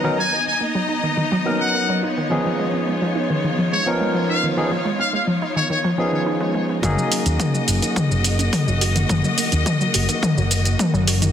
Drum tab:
HH |----------------|----------------|----------------|x-oxx-oxx-oxo-ox|
SH |----------------|----------------|----------------|xxxxxxxxxxxxxxxx|
T2 |----------------|----------------|----------------|o---o---o---o---|
BD |----------------|----------------|----------------|o---o---o---o---|

HH |x-oxx-oxx-oxx-ox|
SH |xxxxxxxxxxxxxxxx|
T2 |o---o---o---o---|
BD |o---o---o---o---|